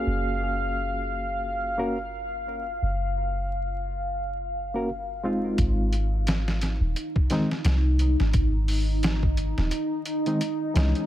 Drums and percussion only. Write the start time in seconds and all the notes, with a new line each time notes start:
5.58 kick, closed hi-hat
5.93 closed hi-hat
6.27 snare, closed hi-hat
6.48 snare
6.61 snare, closed hi-hat
6.96 closed hi-hat
7.16 kick
7.30 snare, closed hi-hat
7.51 snare
7.65 snare, closed hi-hat
7.99 closed hi-hat
8.20 snare
8.33 kick, closed hi-hat
8.68 open hi-hat
9.03 snare, closed hi-hat
9.23 kick
9.37 closed hi-hat
9.58 snare
9.71 closed hi-hat
10.05 closed hi-hat
10.26 closed hi-hat
10.41 closed hi-hat
10.76 snare, closed hi-hat
10.95 closed hi-hat